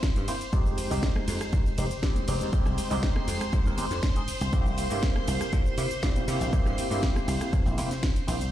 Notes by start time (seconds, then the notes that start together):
Already playing: C5 C6
0.03 kick, snare, closed hi-hat, cabasa, maracas
0.16 G2, closed hi-hat, cabasa, maracas
0.28 A#3 C4 E4 C5, open hi-hat, ride, cabasa
0.41 closed hi-hat, cabasa, maracas
0.53 F2 G#3 C4 D#4 G4 C5 C6, kick, closed hi-hat, cabasa, maracas
0.66 low conga, cabasa, maracas
0.78 open hi-hat, ride, cabasa
0.90 C2 G#3 C4 D#4 G4, open hi-hat, cabasa, maracas
1.02 kick, snare, cabasa, maracas
1.16 cross-stick, high conga, maracas
1.28 F2, open hi-hat, ride, cabasa
1.41 cross-stick, closed hi-hat, cabasa, maracas
1.53 D#2, kick, closed hi-hat, cabasa, maracas
1.66 cabasa, maracas
1.78 F1 G#3 C4 D#4 G4, open hi-hat, ride, cabasa
1.91 muted slap bass stroke, closed hi-hat, cabasa, maracas
2.03 D#2 G#3 C4 D#4 G4, kick, snare, closed hi-hat, cabasa, maracas
2.16 closed hi-hat, high conga, cabasa, maracas
2.28 F1 G#3 C4 D#4 G4, open hi-hat, ride, cabasa
2.41 D#2, closed hi-hat, cabasa, maracas
2.53 G#3 C4 D#4 G4, kick, closed hi-hat, cabasa, maracas
2.66 C2, cross-stick, low conga, cabasa, maracas
2.78 open hi-hat, ride, cabasa
2.90 C2 G#3 C4 D#4 G4, open hi-hat, cabasa, maracas
3.03 kick, snare, cabasa, maracas
3.15 cross-stick, high conga, maracas
3.28 F2, open hi-hat, ride, cabasa
3.41 cross-stick, closed hi-hat, cabasa, maracas
3.52 G#2, kick, closed hi-hat, cabasa, maracas
3.65 D#2 G#3 C4 D#4 A#4, cabasa, maracas
3.78 G#3 C4 D#4 G4, open hi-hat, ride, high conga, cabasa
3.91 F2, snare, closed hi-hat, cabasa, maracas
4.03 kick, snare, closed hi-hat, cabasa, maracas
4.16 G#3 C4 D#4 G#4, closed hi-hat, cabasa, maracas
4.28 muted slap bass stroke, open hi-hat, ride, cabasa
4.41 C2, closed hi-hat, cabasa, maracas
4.53 C2 A#3 C4 E4 G4, kick, closed hi-hat, cabasa, maracas
4.66 low conga, cabasa, maracas
4.78 open hi-hat, ride, cabasa
4.90 G2 A#3 C4 E4 G4, open hi-hat, cabasa, maracas
5.03 kick, snare, closed hi-hat, cabasa, maracas
5.16 cross-stick, high conga, maracas
5.28 C2, open hi-hat, ride, cabasa
5.41 cross-stick, closed hi-hat, cabasa, maracas
5.53 A#2, kick, closed hi-hat, cabasa, maracas
5.66 cabasa, maracas
5.78 C3 A#3 C4 E4 G4, open hi-hat, ride, cabasa
5.91 muted slap bass stroke, closed hi-hat, cabasa, maracas
6.02 A#2 A#3 C4 E4 G4, kick, snare, closed hi-hat, cabasa, maracas
6.16 closed hi-hat, high conga, cabasa, maracas
6.27 C3 A#3 C4 E4 G4, open hi-hat, ride, cabasa
6.41 A#1, closed hi-hat, cabasa, maracas
6.53 A#3 C4 E4 G4, muted slap bass stroke, kick, closed hi-hat, cabasa, maracas
6.66 G2, cross-stick, low conga, cabasa, maracas
6.78 open hi-hat, ride, cabasa
6.90 G2 A#3 C4 E4 G4, open hi-hat, cabasa, maracas
7.02 kick, snare, closed hi-hat, cabasa, maracas
7.16 cross-stick, high conga, cabasa, maracas
7.28 C2, open hi-hat, ride, cabasa
7.41 cross-stick, closed hi-hat, cabasa, maracas
7.53 E2, kick, closed hi-hat, cabasa, maracas
7.66 A#1 A#3 C4 E4 C5, low conga, cabasa, maracas
7.77 C3 A#3 C4 E4 C5, open hi-hat, ride, high conga, cabasa
7.91 snare, closed hi-hat, cabasa, maracas
8.03 kick, snare, closed hi-hat, cabasa, maracas
8.16 closed hi-hat, cabasa, maracas
8.27 A#1 A#3 C4 E4 C5, open hi-hat, ride, cabasa
8.41 C2, closed hi-hat, cabasa, maracas